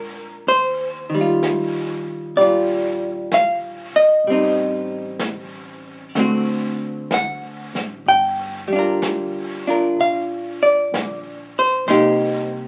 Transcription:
0.00 0.43 A#1 medium
0.00 0.48 G#3 soft
0.00 0.49 D4 soft
0.00 0.49 F4 soft
0.00 0.48 A#4 medium
0.47 2.00 D#2 medium
0.47 2.01 C5 medium
0.47 brush sweep soft
1.10 4.25 D#3 soft
1.14 2.37 G3 soft
1.21 2.40 F4 soft
1.43 brush sweep soft
1.43 snare soft
1.43 hi-hat pedal soft
2.04 muted upright bass stroke soft
2.36 3.89 A#1 medium
2.36 4.26 G3 soft
2.36 3.27 D5 medium
2.36 brush sweep soft
2.41 4.28 F4 soft
3.32 3.96 F5 medium
3.32 brush sweep soft
3.32 snare soft
3.32 hi-hat pedal soft
3.93 5.80 D#5 medium
3.93 muted upright bass stroke soft
4.24 6.10 A1 medium
4.24 6.16 G3 soft
4.24 brush sweep soft
4.30 6.17 C4 soft
4.30 6.18 D#4 soft
5.19 brush sweep soft
5.19 snare soft
5.19 hi-hat pedal soft
6.15 7.70 D2 medium
6.15 8.06 D3 soft
6.15 8.07 A3 soft
6.15 8.08 C4 soft
6.15 brush sweep soft
6.15 snare soft
6.20 8.09 F#4 soft
7.11 8.04 F#5 medium
7.11 brush sweep soft
7.11 snare soft
7.11 hi-hat pedal soft
7.73 8.04 A1 soft
7.73 snare soft
8.06 9.93 G1 medium
8.06 8.78 G5 medium
8.06 brush sweep soft
8.68 11.85 G3 soft
8.73 9.66 D4 soft
8.73 9.67 F4 soft
8.79 9.69 A#4 soft
9.02 brush sweep soft
9.02 snare soft
9.02 hi-hat pedal soft
9.67 11.88 D4 soft
9.67 11.88 F4 soft
9.67 10.00 A#4 soft
9.96 10.88 A#1 medium
9.96 brush sweep soft
10.01 10.58 F5 medium
10.63 11.58 D5 medium
10.92 11.83 A#1 medium
10.92 brush sweep soft
10.92 snare soft
10.92 hi-hat pedal soft
11.59 11.86 C5 medium
11.86 12.68 C2 medium
11.86 12.68 A#3 soft
11.86 12.68 D#4 soft
11.86 12.68 C5 medium
11.86 brush sweep soft
11.86 snare soft
11.91 12.68 G4 medium

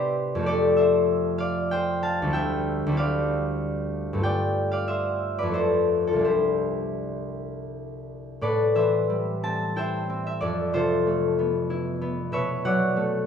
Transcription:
0.00 0.42 C3 soft
0.00 0.44 B3 soft
0.00 0.39 C4 soft
0.00 0.45 D4 soft
0.00 0.47 E4 soft
0.00 0.42 G4 medium
0.00 0.49 B4 medium
0.00 0.77 C5 medium
0.00 0.45 D5 medium
0.00 0.47 E5 medium
0.00 1.70 G5 medium
0.35 2.29 F2 medium
0.35 4.13 A3 soft
0.41 2.26 C4 soft
0.41 4.33 G4 soft
0.46 4.38 A4 medium
0.46 0.98 D5 medium
0.77 1.71 C5 medium
0.77 1.81 E5 medium
1.38 2.97 D5 medium
1.38 2.02 F5 medium
1.71 4.88 C5 medium
1.71 2.32 G5 medium
2.03 2.96 F5 medium
2.03 5.93 A5 medium
2.22 2.85 D2 medium
2.22 2.87 G3 soft
2.27 2.91 C4 soft
2.27 2.93 E4 soft
2.33 4.26 E5 medium
2.33 4.22 G5 medium
2.87 4.20 D2 medium
2.87 5.52 G3 soft
2.92 4.16 C4 soft
2.92 4.24 E4 soft
2.97 4.23 D5 medium
2.97 4.70 F5 medium
4.13 5.51 G2 medium
4.13 5.45 A3 soft
4.18 5.47 C4 soft
4.18 6.07 F4 soft
4.23 4.72 D5 medium
4.23 5.56 G5 medium
4.72 5.37 D5 medium
4.72 6.27 F5 medium
4.88 5.52 C5 medium
4.88 5.72 E5 medium
5.38 5.57 B4 soft
5.38 5.57 D5 medium
5.43 6.21 F2 soft
5.43 6.23 A3 soft
5.48 9.38 C4 soft
5.48 6.20 E4 soft
5.54 6.06 A4 medium
5.54 6.23 C5 medium
6.07 6.28 F4 soft
6.07 6.27 A4 medium
6.13 8.39 C2 soft
6.13 9.08 G3 soft
6.19 8.42 D4 soft
6.19 9.75 E4 soft
6.24 10.15 G4 soft
6.24 8.76 C5 medium
8.41 10.45 A2 medium
8.41 10.74 A4 medium
8.41 8.75 B4 medium
8.41 8.98 D5 medium
8.75 10.45 E3 soft
8.75 12.32 B4 soft
8.75 9.77 C5 medium
8.75 9.76 E5 medium
9.10 10.45 G3 soft
9.44 10.08 C4 soft
9.44 13.27 A5 medium
9.76 11.69 E4 medium
9.76 10.73 C5 medium
9.76 10.25 E5 medium
9.76 10.45 G5 medium
10.10 12.36 C4 soft
10.27 12.31 E5 medium
10.41 12.36 F2 medium
10.41 10.97 D5 medium
10.73 12.35 C3 soft
10.73 12.36 F4 medium
10.73 13.27 A4 medium
10.73 12.35 C5 medium
11.07 12.95 A3 soft
11.39 12.00 B3 soft
11.70 12.35 E4 medium
12.01 13.27 B3 soft
12.32 13.27 B2 medium
12.32 13.27 B4 medium
12.32 12.64 C#5 medium
12.32 12.88 E5 medium
12.65 13.27 F#3 medium
12.65 13.27 C#5 medium
12.65 13.27 D5 medium
12.65 13.27 F#5 medium
12.97 13.27 A3 soft

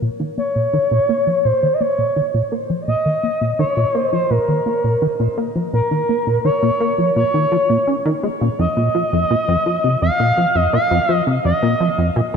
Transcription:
0.02 0.10 A#2 medium
0.20 0.32 D#3 medium
0.37 0.46 A#3 medium
0.37 1.46 C#5 loud
0.55 0.68 A#2 medium
0.73 0.78 D#3 loud
0.91 0.99 A#2 loud
1.09 1.21 A#3 loud
1.27 1.39 F3 medium
1.45 1.53 A#2 medium
1.45 1.75 C5 loud
1.63 1.75 D#3 medium
1.73 1.82 D#5 medium
1.80 1.89 A#3 medium
1.80 2.52 C#5 loud
1.98 2.11 A#2 medium
2.16 2.21 D#3 loud
2.34 2.42 A#2 loud
2.52 2.64 A#3 loud
2.70 2.82 F3 medium
2.87 2.96 A#2 medium
2.87 3.55 D#5 loud
3.05 3.18 D#3 medium
3.23 3.31 A#3 medium
3.41 3.53 A#2 medium
3.59 3.64 D#3 loud
3.59 3.95 C#5 loud
3.77 3.85 A#2 loud
3.95 4.07 A#3 loud
3.95 4.09 C5 loud
4.12 4.25 F3 medium
4.12 4.32 C5 medium
4.30 4.39 A#2 medium
4.30 5.37 A#4 medium
4.48 4.60 D#3 medium
4.66 4.74 A#3 medium
4.84 4.96 A#2 medium
5.02 5.07 D#3 loud
5.20 5.28 A#2 loud
5.37 5.50 A#3 loud
5.55 5.68 F3 medium
5.73 5.81 A#2 medium
5.73 6.41 A#4 loud
5.91 6.03 D#3 medium
6.09 6.17 A#3 medium
6.27 6.39 A#2 medium
6.44 6.49 D#3 loud
6.44 7.12 C#5 loud
6.62 6.71 A#2 loud
6.80 6.93 A#3 loud
6.98 7.10 F3 medium
7.16 7.24 A#2 medium
7.16 8.19 C#5 loud
7.34 7.46 D#3 medium
7.52 7.57 F3 loud
7.70 7.78 A#2 medium
7.87 7.96 C#4 medium
8.05 8.14 D#3 loud
8.23 8.28 G#3 medium
8.41 8.49 A#2 medium
8.59 8.67 F2 medium
8.59 9.98 D#5 loud
8.77 8.89 A#2 medium
8.95 9.03 F3 medium
9.13 9.25 F2 medium
9.30 9.35 A#2 loud
9.48 9.56 F2 loud
9.66 9.78 F3 medium
9.84 9.96 C3 medium
10.02 10.10 F2 medium
10.02 10.57 F5 loud
10.20 10.32 A#2 medium
10.37 10.46 F3 medium
10.55 10.68 F2 medium
10.55 10.73 D#5 loud
10.73 10.78 A#2 loud
10.73 11.23 F5 loud
10.91 10.99 F2 loud
11.09 11.21 F3 medium
11.27 11.39 C3 medium
11.45 11.53 F2 medium
11.45 12.12 D#5 medium
11.62 11.75 A#2 medium
11.80 11.88 F3 medium
11.98 12.10 F2 medium
12.16 12.21 A#2 loud

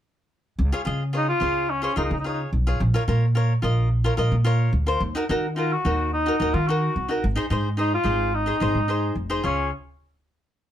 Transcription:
0.59 0.70 C#2 medium
0.72 0.81 F4 medium
0.72 0.81 G#4 medium
0.72 0.81 C#5 medium
0.85 1.31 C#3 medium
0.85 1.02 F4 medium
0.85 1.02 G#4 medium
0.85 1.03 D#5 medium
1.13 1.28 D#4 medium
1.13 1.30 F4 medium
1.13 1.30 G#4 medium
1.13 1.31 C#5 medium
1.29 1.72 F4 medium
1.40 1.85 C#2 medium
1.40 1.66 F4 medium
1.40 1.66 G#4 medium
1.40 1.66 C#5 medium
1.70 1.83 C#4 medium
1.82 1.96 C#4 medium
1.82 1.91 F4 medium
1.82 1.91 G#4 medium
1.82 1.92 C5 medium
1.96 2.08 C#2 medium
1.96 2.04 D#4 medium
1.96 2.13 F4 medium
1.96 2.13 G#4 medium
1.96 2.14 A#4 medium
2.04 2.11 D#4 medium
2.11 2.44 C#3 medium
2.11 2.19 D#4 medium
2.20 2.27 D#4 medium
2.24 2.32 D#4 medium
2.24 2.49 F4 medium
2.24 2.49 G#4 soft
2.24 2.50 C#5 medium
2.33 2.41 D#4 medium
2.53 2.75 B1 medium
2.67 2.80 F4 medium
2.67 2.81 G#4 medium
2.67 2.81 C#5 medium
2.80 2.91 A#1 loud
2.94 3.02 F4 medium
2.94 3.02 A#4 medium
2.94 3.03 C#5 medium
3.08 3.52 A#2 medium
3.08 3.24 F4 medium
3.08 3.25 A#4 medium
3.08 3.25 C#5 medium
3.35 3.52 F4 medium
3.35 3.52 A#4 medium
3.35 3.53 C#5 medium
3.62 4.07 A#1 medium
3.62 3.88 F4 medium
3.62 3.88 A#4 medium
3.62 3.88 D#5 medium
4.04 4.13 F4 medium
4.04 4.13 A#4 medium
4.04 4.13 C#5 medium
4.17 4.29 A#1 medium
4.17 4.34 F4 medium
4.17 4.35 A#4 medium
4.17 4.35 D#5 medium
4.32 4.65 A#2 medium
4.44 4.70 F4 medium
4.44 4.71 A#4 medium
4.44 4.71 C#5 medium
4.73 4.95 D2 medium
4.87 5.01 F4 medium
4.87 5.01 A#4 medium
4.87 5.02 C5 medium
5.00 5.12 D#2 medium
5.15 5.23 D#4 medium
5.15 5.24 F#4 medium
5.15 5.24 A#4 medium
5.29 5.74 D#3 medium
5.29 5.46 D#4 medium
5.29 5.46 F#4 medium
5.29 5.47 A#4 medium
5.56 5.73 D#4 medium
5.56 5.74 F4 medium
5.56 5.74 F#4 medium
5.56 5.74 A#4 medium
5.72 6.12 F#4 medium
5.85 6.29 D#2 medium
5.85 6.10 D#4 medium
5.85 6.10 F#4 medium
5.85 6.10 A#4 medium
6.13 6.55 D#4 medium
6.26 6.34 D#4 medium
6.26 6.35 F#4 medium
6.26 6.36 A#4 medium
6.40 6.51 D#2 medium
6.40 6.57 D#4 medium
6.40 6.57 F#4 medium
6.40 6.58 A#4 medium
6.54 6.87 D#3 medium
6.54 6.69 F4 medium
6.67 6.93 D#4 medium
6.67 7.09 F#4 medium
6.67 6.94 F#4 medium
6.67 6.94 A#4 medium
6.96 7.18 C2 medium
7.08 7.23 D#4 medium
7.08 7.23 F#4 medium
7.08 7.24 A#4 medium
7.24 7.35 G#1 medium
7.36 7.45 D#4 medium
7.36 7.45 G#4 medium
7.36 7.45 C5 medium
7.50 7.95 G#2 medium
7.50 7.67 D#4 medium
7.50 7.68 G#4 medium
7.50 7.68 C5 medium
7.77 7.94 D#4 medium
7.77 7.92 D#4 medium
7.77 7.95 G#4 medium
7.77 7.95 C5 medium
7.95 8.36 F4 medium
8.04 8.50 G#1 medium
8.04 8.30 D#4 medium
8.04 8.30 G#4 medium
8.04 8.31 C5 medium
8.35 9.17 D#4 medium
8.46 8.55 D#4 medium
8.46 8.56 G#4 medium
8.46 8.56 C5 medium
8.60 8.73 G#1 medium
8.60 8.78 D#4 medium
8.60 8.78 G#4 medium
8.60 8.79 C5 medium
8.75 9.08 G#2 medium
8.88 9.14 D#4 medium
8.88 9.14 G#4 medium
8.88 9.14 C5 medium
9.15 9.38 F1 medium
9.30 9.43 D#4 medium
9.30 9.43 G#4 medium
9.30 9.44 C5 medium
9.44 9.70 C#2 medium
9.44 9.70 C#4 medium
9.44 9.70 F4 medium
9.44 9.70 G#4 medium
9.44 9.70 C#5 medium

